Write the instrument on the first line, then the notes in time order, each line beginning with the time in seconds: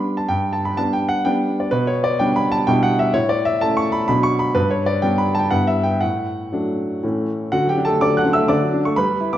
grand piano
Already playing: G3 B3 D4 B5
0.17 A5
0.28 G2 G5
0.53 A5
0.65 B5
0.77 G3 B3 D4 A5
0.93 G5
1.09 F#5
1.25 G3 B3 D4 G5
1.60 D5
1.71 B2 B4
1.87 C#5
2.04 D5
2.19 G3 B3 D4 G5
2.36 B5
2.52 A5
2.67 B2 G3 D4 E4 G5
2.83 F#5
2.99 E5
3.14 A2 C#5
3.29 D5
3.45 E5
3.61 A3 C#4 E4 A5
3.77 C#6
3.92 B5
4.08 B2 F#3 D4 B5
4.23 C#6
4.39 B5
4.55 G2 B4
4.71 C#5
4.86 D5
5.02 G3 B3 D4 G5
5.18 B5
5.35 A5
5.39 G5
5.51 G2 G3 B3 E4 F#5
5.67 E5
5.83 G5
6.01 A2 F#5
6.52 F#3 A3 D4
7.03 A2 E3 A3 C#4
7.52 D3 F#4 F#5
7.65 F#3 G5
7.70 G4
7.78 D4
7.85 A4 A5
7.90 A3
8.01 D3 D5 D6
8.14 F#3 F#6
8.18 F#5
8.26 D4
8.33 E5 E6
8.37 A3
8.48 D3 D5 D6
8.62 F#3
8.74 D4
8.85 A3 C#6
8.96 G3 B4 B5
9.09 G3
9.21 E4
9.33 B3 D6